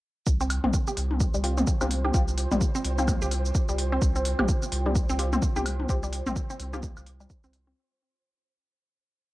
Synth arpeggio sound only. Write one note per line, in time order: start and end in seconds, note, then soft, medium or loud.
0.41 0.45 C4 loud
0.64 0.69 C4 medium
0.88 0.90 G4 medium
1.34 1.37 G3 medium
1.58 1.62 C4 loud
1.81 1.86 C4 medium
2.05 2.07 G4 medium
2.51 2.54 G3 medium
2.75 2.80 C4 loud
2.99 3.03 C4 medium
3.22 3.25 G4 medium
3.69 3.72 G3 medium
3.92 3.97 C4 loud
4.16 4.20 C4 medium
4.39 4.42 G4 medium
4.86 4.89 G3 medium
5.10 5.14 C4 loud
5.33 5.37 C4 medium
5.56 5.59 G4 medium
6.03 6.06 G3 medium
6.27 6.31 C4 loud
6.50 6.55 C4 medium
6.74 6.76 G4 medium
7.20 7.23 G3 medium
7.44 7.48 C4 loud
7.67 7.72 C4 medium